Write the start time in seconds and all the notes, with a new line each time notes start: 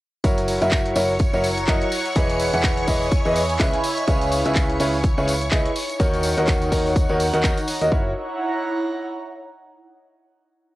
0.24 F#1 F#3 E4 F#4 A#4 C#5 C#6, kick, closed hi-hat, tambourine
0.31 C#5
0.38 closed hi-hat, tambourine
0.48 open hi-hat, tambourine
0.62 F#1 F#3 E4 F#4 A#4 E5, closed hi-hat, tambourine
0.71 kick, clap, closed hi-hat, tambourine
0.86 F#5, closed hi-hat
0.95 F#1 F#3 E4 F#4 A#4 C#5, open hi-hat, tambourine
1.10 A#5, tambourine
1.19 kick, closed hi-hat, tambourine
1.33 F#1 F#3 E4 F#4 A#4 C#5, tambourine
1.44 open hi-hat, tambourine
1.58 closed hi-hat, tambourine
1.67 F#1 F#3 E4 F#4 A#4 D#5, kick, clap, closed hi-hat, tambourine
1.82 closed hi-hat
1.92 open hi-hat, tambourine
2.06 closed hi-hat, tambourine
2.16 E1 E3 E4 G#4 B4 D#5, kick, closed hi-hat, tambourine
2.29 closed hi-hat, tambourine
2.39 D#5 G#5, open hi-hat, tambourine
2.54 E1 E3 E4 G#4 B4 F#5, closed hi-hat, tambourine
2.63 kick, clap, closed hi-hat, tambourine
2.78 closed hi-hat
2.88 E1 E3 E4 G#4 B4 D#5 B5, kick, open hi-hat, tambourine
3.02 tambourine
3.11 kick, closed hi-hat, tambourine
3.25 E2 E3 E4 G#4 B4 D#5, tambourine
3.36 open hi-hat, tambourine
3.50 closed hi-hat, tambourine
3.59 C#2 C#3 E4 G#4 B4 E5, kick, clap, closed hi-hat, tambourine
3.74 closed hi-hat
3.84 open hi-hat, tambourine
3.97 closed hi-hat, tambourine
4.08 C#2 C#3 E4 G#4 B4 C#5, kick, closed hi-hat, tambourine
4.20 C#5, closed hi-hat, tambourine
4.32 open hi-hat, tambourine
4.45 C#2 C#3 E4 G#4 B4 E5, closed hi-hat, tambourine
4.55 kick, clap, closed hi-hat, tambourine
4.70 closed hi-hat
4.80 C#2 C#3 E4 G#4 B4 C#5, open hi-hat, tambourine
4.93 tambourine
5.03 kick, closed hi-hat, tambourine
5.18 C#2 C#3 E4 G#4 B4 C#5, tambourine
5.28 open hi-hat, tambourine
5.41 closed hi-hat, tambourine
5.51 C#2 E4 G#4 B4 D#5, kick, clap, closed hi-hat, tambourine
5.66 closed hi-hat
5.76 D#4, open hi-hat, tambourine
5.90 closed hi-hat, tambourine
6.00 D#2 D#3 D#4 F#4 A#4 C#5, kick, closed hi-hat, tambourine
6.14 closed hi-hat, tambourine
6.23 open hi-hat, tambourine
6.32 F#5
6.38 D#2 D#3 D#4 F#4 A#4 F#5, closed hi-hat, tambourine
6.47 kick, clap, closed hi-hat, tambourine
6.62 closed hi-hat, tambourine
6.72 D#2 D#3 D#4 F#4 A#4 C#5 A#5, kick, open hi-hat, tambourine
6.86 tambourine
6.96 kick, closed hi-hat, tambourine
7.09 D#2 D#3 D#4 F#4 A#4 C#5, tambourine
7.20 open hi-hat, tambourine
7.34 D#2 D#3 D#4 F#4 A#4 F#5, closed hi-hat, tambourine
7.43 D#2 D#3 D#4 F#4 A#4 D#5, kick, clap, closed hi-hat, tambourine
7.57 closed hi-hat, tambourine
7.68 open hi-hat, tambourine
7.81 D#2 D#4 F#4 A#4 D#5, closed hi-hat, tambourine
7.92 F#1 E4 F#4 A#4 C#5, kick
8.00 C#5
8.08 F#5
8.14 A#5